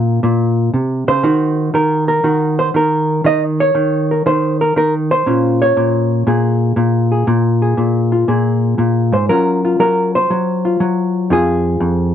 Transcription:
Already playing: A#2 C#4 A#4
0.23 A#2
0.74 C3
1.08 C#3 C5
1.23 D#3 D#4 F#4
1.74 D#3 A#4
2.08 A#4
2.24 D#3 F#4
2.59 C5
2.74 D#3 A#4
3.24 D#3 D#5
3.60 C#5
3.75 D#3
4.11 A#4
4.26 D#3 C5
4.61 A#4
4.76 D#3 A#4
5.11 C5
5.26 A#2 C#4 F4
5.62 C#5
5.77 A#2
6.27 A#2 G#4
6.76 A#2
7.12 G#4
7.27 A#2
7.62 G#4
7.77 A#2
8.12 F4
8.28 A#2 G#4
8.78 A#2
9.12 G#2 C5
9.29 F#3 C#4 F4 A#4
9.65 F4
9.80 F#3 A#4
10.15 C5
10.30 F#3
10.65 F4
10.80 F#3
11.30 F2 C4 F4 G#4
11.80 F2

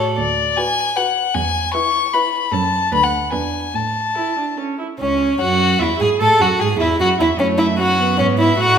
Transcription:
Already playing: A2 F#4 A4
0.18 D2 D5
0.57 F#4 B4 G#5
0.96 F#4 B4 F#5
1.35 E2 G#5
1.73 E4 B4 C#6
2.13 E4 B4 B5
2.51 F#2 C#4 A4 A5
2.92 D2 D4 B4 B5
3.03 F#5
3.31 E2 D4 B4 G#5
3.74 A2 A5
4.15 E4 A4
4.37 D4
4.57 C#4 A4
4.79 E4
4.99 C#2 C#4 C#5
5.39 F#2 F#4 F#5
5.79 E2 E4 E5
5.83 E4
5.99 G#2 G#4 G#5
6.20 A2 A4 A5
6.40 F#2 F#4 F#5
6.60 G#2 G#4 G#5
6.79 E2 E4 E5
6.99 F#2 F#4 F#5
7.19 E2 E4 E5
7.39 F#2 A3 C#4 C#5
7.58 E4 E5
7.78 C#4 F#4 F#5
7.99 B3
8.19 G#2 C#4 C#5
8.39 E4 E5
8.58 A2 A3 F#4 F#5

